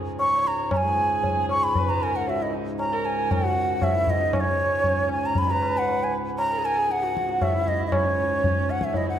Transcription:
Already playing: harmonium C#2 G#2
0.19 bansuri C#6, tabla na
0.33 sarangi C#5
0.45 bansuri A#5, tabla te
0.71 harmonium C#2 G#2, bansuri A#5, tabla na, tabla ge
0.77 bansuri G#5
0.86 sarangi G#4
1.23 tabla tin, tabla ge
1.49 bansuri C#6, tabla na
1.64 bansuri B5
1.75 sarangi B4, tabla tin, tabla ge
1.89 bansuri A#5
2.02 sarangi A#4, bansuri G#5
2.16 bansuri F#5
2.27 sarangi F#4, bansuri E5, tabla tin
2.41 sarangi E4, bansuri D#5
2.53 sarangi D#4
2.79 bansuri A#5, tabla na
2.92 sarangi A#4
3.05 bansuri G#5
3.31 bansuri F#5, tabla na, tabla ge
3.43 sarangi F#4
3.82 bansuri E5, tabla na, tabla ge
3.95 sarangi E4
4.07 bansuri D#5, tabla ge
4.19 sarangi D#4
4.33 bansuri D#5, tabla na, tabla ge
4.40 bansuri C#5
4.44 sarangi C#4
4.84 tabla tin, tabla ge
5.09 bansuri G#5, tabla na
5.26 bansuri A#5
5.35 bansuri B5, tabla tin, tabla ge
5.49 sarangi B4, bansuri A#5
5.62 tabla na
5.78 bansuri F#5
5.88 tabla tin
6.04 bansuri G#5
6.38 bansuri A#5, tabla na
6.52 sarangi A#4
6.58 sarangi G#4
6.63 sarangi A#4, bansuri G#5
6.77 sarangi G#4
6.89 bansuri F#5, tabla te
7.02 sarangi F#4, tabla te
7.17 tabla ke
7.29 tabla te
7.42 bansuri E5, tabla na, tabla ge
7.54 sarangi E4
7.68 bansuri D#5, tabla ge
7.87 bansuri D#5
7.92 bansuri C#5, tabla na, tabla ge
8.04 sarangi C#4
8.44 tabla tin, tabla ge
8.69 bansuri F#5, tabla na
8.81 bansuri E5, tabla ke
8.94 sarangi E4, bansuri D#5, tabla tin, tabla ge
9.08 sarangi D#4, bansuri F#5

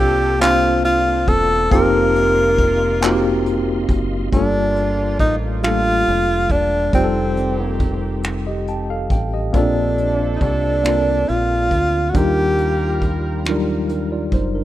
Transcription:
Already playing: horn section F3 D4 A4, tine electric piano A#3 C4 D4 F4 A4, tonewheel organ A#3 D5 A5 C6, tenor saxophone G4
0.00 fingered electric bass C2
0.40 tine electric piano A#3 C4 D4 F4, tenor saxophone F4, clap, closed hi-hat
0.45 tine electric piano C5
0.85 tenor saxophone F4, closed hi-hat
1.28 fingered electric bass E1, tenor saxophone A4, kick, closed hi-hat
1.71 fingered electric bass F1, horn section C3 A#3 F4, tine electric piano A#3 C4 D#4 F4, tenor saxophone A#4, tonewheel organ D#5 F5 C6, kick, closed hi-hat
1.75 tine electric piano G4
2.15 closed hi-hat
2.58 kick, closed hi-hat
3.01 tine electric piano A#3 C4 D#4 F4, clap, closed hi-hat
3.06 tine electric piano F#4
3.12 tine electric piano G4
3.46 closed hi-hat
3.89 fingered electric bass F#1, kick, closed hi-hat
4.32 fingered electric bass G1, horn section F3 A#3 F4, tine electric piano G3 A3 D4 F4, tenor saxophone D4, kick, closed hi-hat
4.37 tine electric piano A#3 A4
4.76 closed hi-hat
5.19 fingered electric bass A1, tenor saxophone D#4, kick, closed hi-hat
5.63 tine electric piano G3 A3 D4 F4, tenor saxophone F4, finger snap, closed hi-hat
5.67 tine electric piano A#3 A4
6.07 fingered electric bass F1, closed hi-hat
6.50 fingered electric bass E1, tenor saxophone D4, kick, closed hi-hat
6.93 fingered electric bass F1, horn section D#3 C4 G4, tine electric piano G3 C4 D#4 F4, tenor saxophone C4, kick, closed hi-hat
6.97 tine electric piano G4
7.04 tine electric piano A4
7.37 closed hi-hat
7.80 kick, closed hi-hat
8.23 finger snap, closed hi-hat
8.47 tine electric piano G4 D#5
8.67 tine electric piano G5 A5, closed hi-hat
8.90 tine electric piano A4 F5
9.10 fingered electric bass A1, tine electric piano G5, kick, closed hi-hat
9.34 tine electric piano G4 D#5
9.53 fingered electric bass A#1, horn section F3 D4 A4, tine electric piano A#3 C4 C#4 F4, tenor saxophone D4, kick, closed hi-hat
9.57 tine electric piano A4
9.62 tine electric piano D4
9.98 closed hi-hat
10.36 tenor saxophone D#4
10.41 fingered electric bass C2, tenor saxophone D4, kick, closed hi-hat
10.84 tine electric piano A#3 C4 D4 F4, finger snap, closed hi-hat
10.88 tine electric piano A#4
11.28 fingered electric bass A#1, tenor saxophone F4, closed hi-hat
11.71 fingered electric bass D2, kick, closed hi-hat
12.09 tenor saxophone F#4
12.13 fingered electric bass D#2, tine electric piano G3 D4 D#4 F4, horn section G3 F4 A#4, tenor saxophone G4, kick, closed hi-hat
12.18 tine electric piano A#4
12.58 closed hi-hat
13.02 kick, closed hi-hat
13.45 tine electric piano F#3 D4 D#4 F4, finger snap, closed hi-hat
13.49 tine electric piano G3 A#4
13.89 tine electric piano D4 A#4, closed hi-hat
14.12 tine electric piano F4 D5
14.32 fingered electric bass F#1, tine electric piano D#4 C5, kick, closed hi-hat
14.55 tine electric piano D4 A#4

